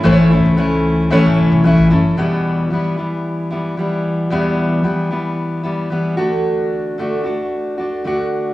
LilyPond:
<<
  \new Staff \with { instrumentName = "Felt piano" } { \time 4/4 \key e \dorian \tempo 4 = 112 << { r2. e''8 a''8 | r1 | r1 | r1 | } \\ { <e' a' c'' cis''>4.~ <e' a' c'' cis''>16 r16 <e' a' cis''>4.~ <e' a' cis''>16 r16 | r1 | r1 | r1 | } >> }
  \new Staff \with { instrumentName = "Steel-string acoustic guitar" } { \time 4/4 \key e \dorian <a, e a cis' e'>8 <a cis' e'>8 <e a cis' e'>4 <a, e a cis' e'>4 <e a cis' e'>8 <a cis' e'>8 | <e, b, e g b e'>4 <e g b e'>8 <e g b e'>4 <e g b e'>8 <e g b e'>4 | <e, b, e g b e'>4 <e g b e'>8 <e g b e'>4 <e g b e'>8 <e g b e'>8 <d a d' fis'>8~ | <d a d' fis'>4 <d a d' fis'>8 <a d' fis'>4 <a d' fis'>8 <d a d' fis'>4 | }
  \new Staff \with { instrumentName = "Upright bass" } { \clef bass \time 4/4 \key e \dorian a,,8. cis,4~ cis,16 r16 a,16 a,,16 b,,8 a,,16 fis,,8 | r1 | r1 | r1 | }
>>